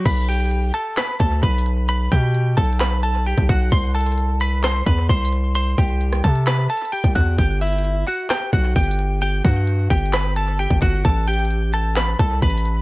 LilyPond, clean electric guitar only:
\new Staff \with { instrumentName = "Clean electric guitar" } { \time 4/4 \key c \lydian \tempo 4 = 131 <b' b''>8 <g' g''>4 <a' a''>8 <b' b''>8 <a' a''>8 <b' b''>4 | <b' b''>8 <g' g''>4 <a' a''>8 <b' b''>8 <a' a''>8 <g' g''>8 <fis' fis''>8 | <c'' c'''>8 <a' a''>4 <b' b''>8 <c'' c'''>8 <b' b''>8 <c'' c'''>4 | <c'' c'''>8 <g' g''>4 <a' a''>8 <b' b''>8 <a' a''>8 <g' g''>8 <fis' fis''>8 |
<g' g''>8 <e' e''>4 <fis' fis''>8 <g' g''>8 <fis' fis''>8 <g' g''>4 | <g' g''>8 <fis' fis''>4 <g' g''>8 <b' b''>8 <a' a''>8 <g' g''>8 <fis' fis''>8 | <a' a''>8 <g' g''>4 <a' a''>8 <b' b''>8 <a' a''>8 <b' b''>4 | }